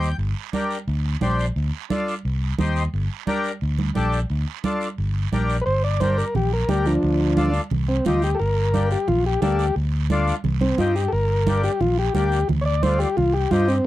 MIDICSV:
0, 0, Header, 1, 5, 480
1, 0, Start_track
1, 0, Key_signature, -2, "minor"
1, 0, Tempo, 341686
1, 270, Time_signature, 4, 2, 24, 8
1, 19482, End_track
2, 0, Start_track
2, 0, Title_t, "Transistor combo organ"
2, 0, Program_c, 0, 18
2, 7888, Note_on_c, 0, 71, 72
2, 7926, Note_off_c, 0, 71, 0
2, 7948, Note_on_c, 0, 72, 109
2, 8188, Note_off_c, 0, 72, 0
2, 8205, Note_on_c, 0, 74, 72
2, 8431, Note_on_c, 0, 72, 82
2, 8437, Note_off_c, 0, 74, 0
2, 8670, Note_off_c, 0, 72, 0
2, 8680, Note_on_c, 0, 70, 72
2, 8914, Note_off_c, 0, 70, 0
2, 8935, Note_on_c, 0, 67, 76
2, 9162, Note_off_c, 0, 67, 0
2, 9181, Note_on_c, 0, 70, 77
2, 9398, Note_on_c, 0, 67, 81
2, 9404, Note_off_c, 0, 70, 0
2, 9632, Note_off_c, 0, 67, 0
2, 9634, Note_on_c, 0, 53, 82
2, 9648, Note_on_c, 0, 62, 88
2, 10540, Note_off_c, 0, 53, 0
2, 10575, Note_off_c, 0, 62, 0
2, 11078, Note_on_c, 0, 60, 82
2, 11311, Note_off_c, 0, 60, 0
2, 11325, Note_on_c, 0, 65, 68
2, 11555, Note_off_c, 0, 65, 0
2, 11575, Note_on_c, 0, 67, 85
2, 11726, Note_on_c, 0, 69, 65
2, 11764, Note_off_c, 0, 69, 0
2, 11791, Note_on_c, 0, 70, 96
2, 11800, Note_off_c, 0, 67, 0
2, 12492, Note_off_c, 0, 70, 0
2, 12529, Note_on_c, 0, 67, 85
2, 12753, Note_on_c, 0, 65, 81
2, 12756, Note_off_c, 0, 67, 0
2, 12988, Note_off_c, 0, 65, 0
2, 13011, Note_on_c, 0, 67, 89
2, 13215, Note_off_c, 0, 67, 0
2, 13232, Note_on_c, 0, 67, 98
2, 13699, Note_off_c, 0, 67, 0
2, 14902, Note_on_c, 0, 60, 78
2, 15140, Note_off_c, 0, 60, 0
2, 15146, Note_on_c, 0, 65, 81
2, 15382, Note_off_c, 0, 65, 0
2, 15389, Note_on_c, 0, 67, 83
2, 15569, Note_on_c, 0, 69, 65
2, 15605, Note_off_c, 0, 69, 0
2, 15624, Note_off_c, 0, 67, 0
2, 15631, Note_on_c, 0, 70, 93
2, 16329, Note_off_c, 0, 70, 0
2, 16351, Note_on_c, 0, 67, 93
2, 16584, Note_off_c, 0, 67, 0
2, 16587, Note_on_c, 0, 65, 83
2, 16822, Note_off_c, 0, 65, 0
2, 16842, Note_on_c, 0, 67, 83
2, 17048, Note_off_c, 0, 67, 0
2, 17064, Note_on_c, 0, 67, 91
2, 17533, Note_off_c, 0, 67, 0
2, 17721, Note_on_c, 0, 73, 72
2, 17758, Note_off_c, 0, 73, 0
2, 17780, Note_on_c, 0, 74, 105
2, 18018, Note_off_c, 0, 74, 0
2, 18020, Note_on_c, 0, 72, 85
2, 18248, Note_on_c, 0, 67, 82
2, 18257, Note_off_c, 0, 72, 0
2, 18491, Note_off_c, 0, 67, 0
2, 18500, Note_on_c, 0, 65, 94
2, 18732, Note_on_c, 0, 67, 95
2, 18737, Note_off_c, 0, 65, 0
2, 18973, Note_off_c, 0, 67, 0
2, 18980, Note_on_c, 0, 65, 88
2, 19217, Note_off_c, 0, 65, 0
2, 19220, Note_on_c, 0, 60, 91
2, 19457, Note_off_c, 0, 60, 0
2, 19482, End_track
3, 0, Start_track
3, 0, Title_t, "Accordion"
3, 0, Program_c, 1, 21
3, 0, Note_on_c, 1, 79, 64
3, 237, Note_off_c, 1, 79, 0
3, 753, Note_on_c, 1, 62, 79
3, 762, Note_on_c, 1, 67, 73
3, 764, Note_on_c, 1, 70, 85
3, 1089, Note_off_c, 1, 62, 0
3, 1094, Note_off_c, 1, 67, 0
3, 1095, Note_off_c, 1, 70, 0
3, 1709, Note_on_c, 1, 62, 74
3, 1712, Note_on_c, 1, 67, 72
3, 1717, Note_on_c, 1, 72, 90
3, 2048, Note_off_c, 1, 62, 0
3, 2050, Note_off_c, 1, 67, 0
3, 2052, Note_off_c, 1, 72, 0
3, 2672, Note_on_c, 1, 62, 79
3, 2676, Note_on_c, 1, 65, 74
3, 2680, Note_on_c, 1, 69, 87
3, 3011, Note_off_c, 1, 62, 0
3, 3013, Note_off_c, 1, 65, 0
3, 3015, Note_off_c, 1, 69, 0
3, 3644, Note_on_c, 1, 67, 73
3, 3646, Note_on_c, 1, 63, 86
3, 3651, Note_on_c, 1, 72, 88
3, 3978, Note_off_c, 1, 67, 0
3, 3979, Note_off_c, 1, 63, 0
3, 3981, Note_off_c, 1, 72, 0
3, 4596, Note_on_c, 1, 62, 80
3, 4604, Note_on_c, 1, 67, 77
3, 4609, Note_on_c, 1, 70, 91
3, 4934, Note_off_c, 1, 62, 0
3, 4938, Note_off_c, 1, 67, 0
3, 4941, Note_off_c, 1, 70, 0
3, 5550, Note_on_c, 1, 62, 81
3, 5552, Note_on_c, 1, 67, 74
3, 5562, Note_on_c, 1, 69, 86
3, 5892, Note_off_c, 1, 62, 0
3, 5893, Note_off_c, 1, 67, 0
3, 5898, Note_off_c, 1, 69, 0
3, 6521, Note_on_c, 1, 62, 82
3, 6527, Note_on_c, 1, 65, 72
3, 6532, Note_on_c, 1, 69, 84
3, 6858, Note_off_c, 1, 62, 0
3, 6861, Note_off_c, 1, 65, 0
3, 6863, Note_off_c, 1, 69, 0
3, 7482, Note_on_c, 1, 62, 76
3, 7489, Note_on_c, 1, 67, 76
3, 7493, Note_on_c, 1, 70, 85
3, 7819, Note_off_c, 1, 62, 0
3, 7822, Note_off_c, 1, 67, 0
3, 7824, Note_off_c, 1, 70, 0
3, 8444, Note_on_c, 1, 62, 74
3, 8444, Note_on_c, 1, 67, 65
3, 8454, Note_on_c, 1, 70, 77
3, 8779, Note_off_c, 1, 62, 0
3, 8779, Note_off_c, 1, 67, 0
3, 8784, Note_off_c, 1, 70, 0
3, 9401, Note_on_c, 1, 62, 65
3, 9404, Note_on_c, 1, 67, 67
3, 9407, Note_on_c, 1, 70, 71
3, 9737, Note_off_c, 1, 62, 0
3, 9739, Note_off_c, 1, 67, 0
3, 9740, Note_off_c, 1, 70, 0
3, 10348, Note_on_c, 1, 62, 82
3, 10352, Note_on_c, 1, 65, 84
3, 10366, Note_on_c, 1, 69, 94
3, 10690, Note_off_c, 1, 62, 0
3, 10692, Note_off_c, 1, 65, 0
3, 10699, Note_off_c, 1, 69, 0
3, 11326, Note_on_c, 1, 60, 68
3, 11331, Note_on_c, 1, 63, 66
3, 11334, Note_on_c, 1, 67, 80
3, 11658, Note_off_c, 1, 60, 0
3, 11661, Note_off_c, 1, 63, 0
3, 11662, Note_off_c, 1, 67, 0
3, 12270, Note_on_c, 1, 58, 72
3, 12275, Note_on_c, 1, 62, 65
3, 12286, Note_on_c, 1, 67, 81
3, 12610, Note_off_c, 1, 58, 0
3, 12612, Note_off_c, 1, 62, 0
3, 12617, Note_off_c, 1, 67, 0
3, 13227, Note_on_c, 1, 62, 69
3, 13228, Note_on_c, 1, 58, 77
3, 13239, Note_on_c, 1, 69, 79
3, 13567, Note_off_c, 1, 62, 0
3, 13568, Note_off_c, 1, 58, 0
3, 13573, Note_off_c, 1, 69, 0
3, 14197, Note_on_c, 1, 57, 86
3, 14202, Note_on_c, 1, 62, 77
3, 14212, Note_on_c, 1, 65, 96
3, 14532, Note_off_c, 1, 57, 0
3, 14534, Note_off_c, 1, 62, 0
3, 14539, Note_off_c, 1, 65, 0
3, 15155, Note_on_c, 1, 60, 69
3, 15164, Note_on_c, 1, 63, 64
3, 15166, Note_on_c, 1, 67, 76
3, 15490, Note_off_c, 1, 60, 0
3, 15494, Note_off_c, 1, 63, 0
3, 15495, Note_off_c, 1, 67, 0
3, 16115, Note_on_c, 1, 58, 75
3, 16127, Note_on_c, 1, 62, 64
3, 16130, Note_on_c, 1, 67, 83
3, 16449, Note_off_c, 1, 58, 0
3, 16455, Note_off_c, 1, 62, 0
3, 16457, Note_off_c, 1, 67, 0
3, 17069, Note_on_c, 1, 58, 72
3, 17079, Note_on_c, 1, 62, 67
3, 17084, Note_on_c, 1, 67, 78
3, 17405, Note_off_c, 1, 58, 0
3, 17411, Note_off_c, 1, 62, 0
3, 17413, Note_off_c, 1, 67, 0
3, 18035, Note_on_c, 1, 57, 74
3, 18047, Note_on_c, 1, 62, 73
3, 18050, Note_on_c, 1, 65, 81
3, 18368, Note_off_c, 1, 57, 0
3, 18374, Note_off_c, 1, 62, 0
3, 18375, Note_off_c, 1, 65, 0
3, 18986, Note_on_c, 1, 60, 72
3, 18994, Note_on_c, 1, 63, 73
3, 18999, Note_on_c, 1, 67, 84
3, 19323, Note_off_c, 1, 60, 0
3, 19327, Note_off_c, 1, 63, 0
3, 19329, Note_off_c, 1, 67, 0
3, 19482, End_track
4, 0, Start_track
4, 0, Title_t, "Fingered electric bass"
4, 0, Program_c, 2, 33
4, 0, Note_on_c, 2, 39, 77
4, 170, Note_off_c, 2, 39, 0
4, 258, Note_on_c, 2, 31, 91
4, 456, Note_off_c, 2, 31, 0
4, 1230, Note_on_c, 2, 38, 77
4, 1616, Note_off_c, 2, 38, 0
4, 1711, Note_on_c, 2, 34, 84
4, 2097, Note_off_c, 2, 34, 0
4, 2193, Note_on_c, 2, 38, 94
4, 2387, Note_off_c, 2, 38, 0
4, 3159, Note_on_c, 2, 36, 79
4, 3543, Note_off_c, 2, 36, 0
4, 3637, Note_on_c, 2, 39, 84
4, 4022, Note_off_c, 2, 39, 0
4, 4123, Note_on_c, 2, 31, 102
4, 4314, Note_off_c, 2, 31, 0
4, 5085, Note_on_c, 2, 38, 79
4, 5468, Note_off_c, 2, 38, 0
4, 5565, Note_on_c, 2, 34, 88
4, 5948, Note_off_c, 2, 34, 0
4, 6044, Note_on_c, 2, 38, 93
4, 6235, Note_off_c, 2, 38, 0
4, 6999, Note_on_c, 2, 31, 84
4, 7384, Note_off_c, 2, 31, 0
4, 7481, Note_on_c, 2, 34, 84
4, 7866, Note_off_c, 2, 34, 0
4, 7960, Note_on_c, 2, 31, 83
4, 8729, Note_off_c, 2, 31, 0
4, 8918, Note_on_c, 2, 34, 83
4, 9303, Note_off_c, 2, 34, 0
4, 9395, Note_on_c, 2, 38, 75
4, 9781, Note_off_c, 2, 38, 0
4, 9882, Note_on_c, 2, 38, 90
4, 10649, Note_off_c, 2, 38, 0
4, 10836, Note_on_c, 2, 36, 84
4, 11221, Note_off_c, 2, 36, 0
4, 11316, Note_on_c, 2, 38, 83
4, 11701, Note_off_c, 2, 38, 0
4, 11805, Note_on_c, 2, 31, 85
4, 12569, Note_off_c, 2, 31, 0
4, 12752, Note_on_c, 2, 34, 90
4, 13138, Note_off_c, 2, 34, 0
4, 13235, Note_on_c, 2, 38, 83
4, 13619, Note_off_c, 2, 38, 0
4, 13712, Note_on_c, 2, 38, 90
4, 14480, Note_off_c, 2, 38, 0
4, 14672, Note_on_c, 2, 36, 90
4, 15056, Note_off_c, 2, 36, 0
4, 15154, Note_on_c, 2, 43, 81
4, 15537, Note_off_c, 2, 43, 0
4, 15631, Note_on_c, 2, 31, 90
4, 16398, Note_off_c, 2, 31, 0
4, 16586, Note_on_c, 2, 34, 84
4, 16972, Note_off_c, 2, 34, 0
4, 17064, Note_on_c, 2, 38, 78
4, 17450, Note_off_c, 2, 38, 0
4, 17547, Note_on_c, 2, 38, 89
4, 18316, Note_off_c, 2, 38, 0
4, 18505, Note_on_c, 2, 36, 82
4, 18890, Note_off_c, 2, 36, 0
4, 18986, Note_on_c, 2, 43, 83
4, 19371, Note_off_c, 2, 43, 0
4, 19482, End_track
5, 0, Start_track
5, 0, Title_t, "Drums"
5, 34, Note_on_c, 9, 73, 66
5, 174, Note_off_c, 9, 73, 0
5, 269, Note_on_c, 9, 74, 65
5, 410, Note_off_c, 9, 74, 0
5, 748, Note_on_c, 9, 63, 80
5, 756, Note_on_c, 9, 73, 67
5, 888, Note_off_c, 9, 63, 0
5, 897, Note_off_c, 9, 73, 0
5, 993, Note_on_c, 9, 73, 64
5, 1133, Note_off_c, 9, 73, 0
5, 1232, Note_on_c, 9, 74, 63
5, 1372, Note_off_c, 9, 74, 0
5, 1703, Note_on_c, 9, 63, 79
5, 1710, Note_on_c, 9, 73, 62
5, 1843, Note_off_c, 9, 63, 0
5, 1850, Note_off_c, 9, 73, 0
5, 1958, Note_on_c, 9, 73, 62
5, 2098, Note_off_c, 9, 73, 0
5, 2195, Note_on_c, 9, 74, 66
5, 2335, Note_off_c, 9, 74, 0
5, 2673, Note_on_c, 9, 73, 63
5, 2674, Note_on_c, 9, 63, 81
5, 2814, Note_off_c, 9, 73, 0
5, 2815, Note_off_c, 9, 63, 0
5, 2927, Note_on_c, 9, 73, 66
5, 3068, Note_off_c, 9, 73, 0
5, 3165, Note_on_c, 9, 74, 61
5, 3305, Note_off_c, 9, 74, 0
5, 3632, Note_on_c, 9, 63, 81
5, 3644, Note_on_c, 9, 73, 62
5, 3772, Note_off_c, 9, 63, 0
5, 3785, Note_off_c, 9, 73, 0
5, 3879, Note_on_c, 9, 73, 63
5, 4020, Note_off_c, 9, 73, 0
5, 4126, Note_on_c, 9, 74, 63
5, 4266, Note_off_c, 9, 74, 0
5, 4594, Note_on_c, 9, 63, 79
5, 4605, Note_on_c, 9, 73, 63
5, 4735, Note_off_c, 9, 63, 0
5, 4746, Note_off_c, 9, 73, 0
5, 4836, Note_on_c, 9, 73, 65
5, 4976, Note_off_c, 9, 73, 0
5, 5073, Note_on_c, 9, 74, 62
5, 5213, Note_off_c, 9, 74, 0
5, 5317, Note_on_c, 9, 63, 66
5, 5458, Note_off_c, 9, 63, 0
5, 5552, Note_on_c, 9, 63, 75
5, 5558, Note_on_c, 9, 73, 61
5, 5693, Note_off_c, 9, 63, 0
5, 5698, Note_off_c, 9, 73, 0
5, 5795, Note_on_c, 9, 73, 63
5, 5935, Note_off_c, 9, 73, 0
5, 6035, Note_on_c, 9, 74, 62
5, 6176, Note_off_c, 9, 74, 0
5, 6514, Note_on_c, 9, 73, 67
5, 6517, Note_on_c, 9, 63, 81
5, 6655, Note_off_c, 9, 73, 0
5, 6657, Note_off_c, 9, 63, 0
5, 6757, Note_on_c, 9, 73, 68
5, 6897, Note_off_c, 9, 73, 0
5, 6999, Note_on_c, 9, 74, 64
5, 7139, Note_off_c, 9, 74, 0
5, 7480, Note_on_c, 9, 63, 73
5, 7483, Note_on_c, 9, 73, 64
5, 7621, Note_off_c, 9, 63, 0
5, 7624, Note_off_c, 9, 73, 0
5, 7722, Note_on_c, 9, 73, 65
5, 7862, Note_off_c, 9, 73, 0
5, 7960, Note_on_c, 9, 74, 66
5, 8101, Note_off_c, 9, 74, 0
5, 8436, Note_on_c, 9, 73, 66
5, 8442, Note_on_c, 9, 63, 84
5, 8576, Note_off_c, 9, 73, 0
5, 8582, Note_off_c, 9, 63, 0
5, 8688, Note_on_c, 9, 73, 68
5, 8829, Note_off_c, 9, 73, 0
5, 8920, Note_on_c, 9, 64, 75
5, 8927, Note_on_c, 9, 74, 66
5, 9061, Note_off_c, 9, 64, 0
5, 9068, Note_off_c, 9, 74, 0
5, 9395, Note_on_c, 9, 63, 86
5, 9401, Note_on_c, 9, 73, 64
5, 9535, Note_off_c, 9, 63, 0
5, 9542, Note_off_c, 9, 73, 0
5, 9634, Note_on_c, 9, 73, 67
5, 9774, Note_off_c, 9, 73, 0
5, 9872, Note_on_c, 9, 74, 68
5, 10012, Note_off_c, 9, 74, 0
5, 10350, Note_on_c, 9, 73, 65
5, 10354, Note_on_c, 9, 63, 80
5, 10491, Note_off_c, 9, 73, 0
5, 10494, Note_off_c, 9, 63, 0
5, 10587, Note_on_c, 9, 73, 66
5, 10727, Note_off_c, 9, 73, 0
5, 10821, Note_on_c, 9, 74, 66
5, 10836, Note_on_c, 9, 64, 74
5, 10961, Note_off_c, 9, 74, 0
5, 10976, Note_off_c, 9, 64, 0
5, 11307, Note_on_c, 9, 73, 66
5, 11322, Note_on_c, 9, 63, 88
5, 11322, Note_on_c, 9, 64, 70
5, 11448, Note_off_c, 9, 73, 0
5, 11463, Note_off_c, 9, 63, 0
5, 11463, Note_off_c, 9, 64, 0
5, 11551, Note_on_c, 9, 73, 72
5, 11691, Note_off_c, 9, 73, 0
5, 11793, Note_on_c, 9, 74, 70
5, 11934, Note_off_c, 9, 74, 0
5, 12274, Note_on_c, 9, 73, 69
5, 12276, Note_on_c, 9, 63, 81
5, 12415, Note_off_c, 9, 73, 0
5, 12417, Note_off_c, 9, 63, 0
5, 12514, Note_on_c, 9, 73, 69
5, 12654, Note_off_c, 9, 73, 0
5, 12751, Note_on_c, 9, 74, 68
5, 12758, Note_on_c, 9, 64, 72
5, 12891, Note_off_c, 9, 74, 0
5, 12898, Note_off_c, 9, 64, 0
5, 13232, Note_on_c, 9, 73, 67
5, 13238, Note_on_c, 9, 63, 83
5, 13372, Note_off_c, 9, 73, 0
5, 13378, Note_off_c, 9, 63, 0
5, 13474, Note_on_c, 9, 73, 70
5, 13614, Note_off_c, 9, 73, 0
5, 13711, Note_on_c, 9, 74, 65
5, 13852, Note_off_c, 9, 74, 0
5, 14188, Note_on_c, 9, 63, 82
5, 14191, Note_on_c, 9, 73, 66
5, 14328, Note_off_c, 9, 63, 0
5, 14331, Note_off_c, 9, 73, 0
5, 14436, Note_on_c, 9, 73, 75
5, 14576, Note_off_c, 9, 73, 0
5, 14665, Note_on_c, 9, 64, 73
5, 14674, Note_on_c, 9, 74, 70
5, 14805, Note_off_c, 9, 64, 0
5, 14815, Note_off_c, 9, 74, 0
5, 14907, Note_on_c, 9, 63, 71
5, 15048, Note_off_c, 9, 63, 0
5, 15144, Note_on_c, 9, 63, 81
5, 15151, Note_on_c, 9, 73, 65
5, 15285, Note_off_c, 9, 63, 0
5, 15292, Note_off_c, 9, 73, 0
5, 15395, Note_on_c, 9, 73, 67
5, 15536, Note_off_c, 9, 73, 0
5, 15626, Note_on_c, 9, 74, 70
5, 15767, Note_off_c, 9, 74, 0
5, 16108, Note_on_c, 9, 63, 86
5, 16114, Note_on_c, 9, 73, 70
5, 16248, Note_off_c, 9, 63, 0
5, 16254, Note_off_c, 9, 73, 0
5, 16346, Note_on_c, 9, 73, 76
5, 16487, Note_off_c, 9, 73, 0
5, 16582, Note_on_c, 9, 74, 67
5, 16586, Note_on_c, 9, 64, 78
5, 16722, Note_off_c, 9, 74, 0
5, 16727, Note_off_c, 9, 64, 0
5, 17063, Note_on_c, 9, 63, 81
5, 17066, Note_on_c, 9, 73, 72
5, 17204, Note_off_c, 9, 63, 0
5, 17206, Note_off_c, 9, 73, 0
5, 17308, Note_on_c, 9, 73, 69
5, 17448, Note_off_c, 9, 73, 0
5, 17543, Note_on_c, 9, 74, 65
5, 17549, Note_on_c, 9, 64, 75
5, 17683, Note_off_c, 9, 74, 0
5, 17689, Note_off_c, 9, 64, 0
5, 18023, Note_on_c, 9, 63, 85
5, 18027, Note_on_c, 9, 73, 72
5, 18163, Note_off_c, 9, 63, 0
5, 18168, Note_off_c, 9, 73, 0
5, 18264, Note_on_c, 9, 73, 74
5, 18405, Note_off_c, 9, 73, 0
5, 18499, Note_on_c, 9, 74, 67
5, 18509, Note_on_c, 9, 64, 78
5, 18639, Note_off_c, 9, 74, 0
5, 18649, Note_off_c, 9, 64, 0
5, 18978, Note_on_c, 9, 63, 84
5, 18987, Note_on_c, 9, 73, 65
5, 19119, Note_off_c, 9, 63, 0
5, 19127, Note_off_c, 9, 73, 0
5, 19225, Note_on_c, 9, 73, 67
5, 19365, Note_off_c, 9, 73, 0
5, 19482, End_track
0, 0, End_of_file